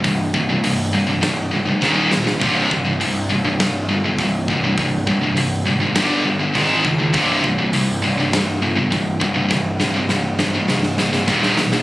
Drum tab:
HH |o---o---o-------|o---o---o---o---|o---o---o---o---|o---o---o---o---|
SD |--------o---o-oo|--------o-------|--------o-------|--------o-------|
BD |o-o---------o---|o-o---------o-o-|o-o---------o-o-|o-o---------o-o-|

HH |----------------|
SD |o-o-o-o-oooooooo|
BD |o-----------o---|